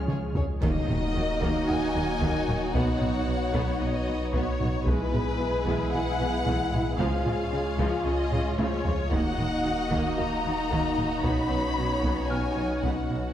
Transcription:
Already playing: sub bass C#2, cello section F3, french horn section G#3 C#4, analog synth pad G#3 C#4 G#4 C#5, viola section F4, violin section F6
0.08 double bass section C#2, synth pluck C#3, violin section G#4 C#5, taiko mid
0.34 double bass section C#2, synth pluck F3, violin section G#4 C#5, taiko low
0.61 sub bass D#1, double bass section D#2, synth pluck D#3, cello section D#3, french horn section F#3 D#4, analog synth pad A#3 D#4 F#4 A#4, viola section A#3 D#4, violin section F#4 D#5, taiko, impact
0.88 double bass section D#2, cello section D#3, viola section A#3, synth pluck D#4, felt piano D#4 D#5, taiko low-mid
1.15 double bass section D#2, cello section D#3, viola section F#3, synth pluck D#4
1.42 double bass section D#2, cello section D#3, synth pluck D#3, viola section A#3, taiko
1.68 double bass section D#2, cello section D#3, viola section A#3, synth pluck D#4, felt piano F#5, violin section G#5
1.94 double bass section D#2, cello section D#3, viola section F#3, synth pluck D#4
2.21 double bass section D#2, synth pluck D#3, cello section D#3, viola section A#3, taiko
2.48 double bass section D#2, cello section D#3, synth pluck F#3, viola section A#3, taiko low-mid
2.74 sub bass B1, double bass section B1, cello section B2, synth pluck B3, viola section B3, analog synth pad B3 C#5, violin section C#5 F#5, felt piano D#5, taiko
3.01 double bass section B1, cello section B2, viola section B3, synth pluck B4, taiko low-mid
3.27 double bass section B1, cello section B2, viola section F#3, synth pluck B4
3.54 double bass section B1, cello section B2, viola section B3, synth pluck B3, taiko
3.80 double bass section B1, cello section B2, viola section B3, synth pluck B4, violin section D#5
4.07 double bass section B1, cello section B2, viola section F#3, synth pluck B4
4.33 double bass section B1, cello section B2, viola section B3, synth pluck B3, violin section C#5, taiko
4.60 double bass section B1, cello section B2, viola section B3, synth pluck D#4, taiko low-mid
4.85 double bass section B1, cello section B2, synth pluck E3, french horn section G#3 E4, viola section G#3 E4, analog synth pad E4 G#4 B4, violin section G#4 B4, taiko
5.13 double bass section B1, cello section B2, viola section G#3, synth pluck E4, taiko low-mid
5.39 double bass section B1, cello section B2, viola section E3, synth pluck E4
5.66 double bass section B1, cello section B2, synth pluck E3, viola section G#3, taiko
5.92 double bass section B1, cello section B2, viola section G#3, synth pluck E4, violin section F#5
6.19 double bass section B1, cello section B2, viola section E3, synth pluck E4
6.45 double bass section B1, cello section B2, synth pluck E3, viola section G#3, taiko
6.72 double bass section B1, cello section B2, viola section G#3, synth pluck G#3, taiko low-mid
6.98 sub bass C#2, double bass section C#2, synth pluck C#3, cello section C#3, viola section F3 F4, analog synth pad G#3 F4 C#5, french horn section F4, violin section G#4 F5, taiko
7.25 double bass section C#2, cello section C#3, viola section F3, synth pluck C#4, taiko low-mid
7.52 double bass section C#2, viola section C#3, cello section C#3, synth pluck C#4
7.78 double bass section C#2, cello section C#3, synth pluck C#3, viola section F3, taiko
8.04 double bass section C#2, cello section C#3, viola section F3, synth pluck C#4, violin section D#5
8.31 double bass section C#2, cello section C#3, viola section C#3, synth pluck C#4, taiko low-mid
8.58 double bass section C#2, cello section C#3, synth pluck C#3, viola section F3, violin section C#5, taiko high
8.85 double bass section C#2, cello section C#3, viola section F3, synth pluck F3, taiko low
9.10 sub bass D#1, double bass section D#2, cello section D#3, synth pluck D#3, french horn section A#3 D#4, viola section A#3 D#4, analog synth pad A#3 D#4 F#4 D#5, violin section F#4 D#5 F#5, taiko
9.37 double bass section D#2, cello section D#3, viola section A#3, synth pluck D#4, taiko low-mid
9.64 double bass section D#2, cello section D#3, viola section F#3, synth pluck D#4
9.91 double bass section D#2, cello section D#3, synth pluck D#3, viola section A#3, taiko
10.17 double bass section D#2, cello section D#3, viola section A#3, synth pluck D#4, felt piano F#4 F5, violin section A#5
10.44 double bass section D#2, cello section D#3, viola section F#3, synth pluck D#4
10.71 double bass section D#2, cello section D#3, synth pluck D#3, viola section A#3, taiko
10.97 double bass section D#2, cello section D#3, synth pluck F#3, viola section A#3, taiko low-mid
11.23 double bass section B1, sub bass B1, cello section B2, analog synth pad B3 C#5, synth pluck B3, viola section B3, french horn section C#4, violin section C#5 B5, taiko
11.50 double bass section B1, cello section B2, viola section B3, synth pluck B4
11.77 double bass section B1, cello section B2, viola section F#3, synth pluck B4
12.03 double bass section B1, cello section B2, viola section B3, synth pluck B3, taiko
12.30 double bass section B1, cello section B2, viola section B3, synth pluck B4, violin section G#5, felt piano F6
12.56 double bass section B1, cello section B2, viola section F#3, synth pluck B4
12.82 double bass section B1, cello section B2, viola section B3, synth pluck B3, violin section F#5, taiko
13.09 double bass section B1, cello section B2, viola section B3, synth pluck D#4

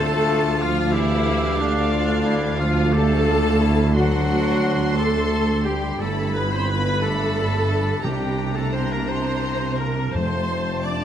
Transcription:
Already playing: tuba D2, cello section D2, double bass section D2, harp D3 A3 F4 A4, french horn section A3, clarinet F4, viola section A4, oboe A4, violin section F5 A5, flute section A5
0.28 harp D4
0.60 french horn section F3, viola section F4, oboe F4, harp D5, violin section F5, flute section F5
0.92 french horn section E3, viola section E4, oboe E4, clarinet G4, harp A4, violin section E5, flute section E5
1.26 harp D5
1.59 french horn section D3, viola section D4, oboe D4, harp A4, violin section D5, flute section D5
1.92 harp A3, clarinet F4
2.26 harp D4, clarinet E4
2.59 french horn section F3, clarinet D4, oboe F4, viola section F4, harp D5, violin section F5, flute section F5
2.93 french horn section A3, clarinet G4, harp A4, oboe A4, viola section A4, violin section A5, flute section A5
3.27 clarinet F4, harp D5
3.61 clarinet E4, harp A4
3.95 harp D3, french horn section F#3, clarinet D4, oboe F#4, viola section F#4, flute section F#5, violin section F#5 C6
4.30 harp C4
4.63 harp D4
4.97 french horn section A3, viola section A4, oboe A4, harp D5, violin section A5, flute section A5
5.31 harp C5
5.64 french horn section G3, oboe G4, viola section G4, harp D5, violin section G5, flute section G5
6.00 double bass section G1, tuba G1, cello section G2, harp G2, french horn section A3, clarinet E4, oboe A4, viola section A4, flute section A5, violin section A5 B5
6.35 harp B3, french horn section B3, oboe B4, viola section B4, flute section B5, violin section B5
6.52 french horn section C4, oboe C5, viola section C5, violin section C6, flute section C6
6.69 french horn section B3, harp F4, oboe B4, viola section B4, violin section B5, flute section B5
7.02 french horn section A3, clarinet D4, oboe A4, viola section A4, harp D5, violin section A5
7.07 flute section A5
7.39 harp B4
7.72 harp D5
8.03 double bass section C2, tuba C2, cello section C3, harp C3, timpani C3, french horn section G3, viola section G4, oboe G4, violin section G5 A#5, flute section G5
8.38 harp C4
8.53 french horn section A3, oboe A4, viola section A4, violin section A5, flute section A5
8.72 french horn section C4, harp E4, oboe C5, viola section C5, violin section C6, flute section C6
8.90 french horn section A#3, oboe A#4, viola section A#4, violin section A#5, flute section A#5
9.07 french horn section C4, harp A#4, viola section C5, oboe C5, violin section C6, flute section C6
9.43 harp C5
9.79 french horn section A#3, viola section A#4, harp A#4, oboe A#4, violin section A#5, flute section A#5
10.13 tuba F1, double bass section F1, cello section F2, harp F2, timpani F2, clarinet A3, french horn section C4, viola section C5, oboe C5, violin section A5 C6, flute section C6
10.50 harp C4
10.82 french horn section D4, harp F4, viola section D5, oboe D5, violin section D6, flute section D6

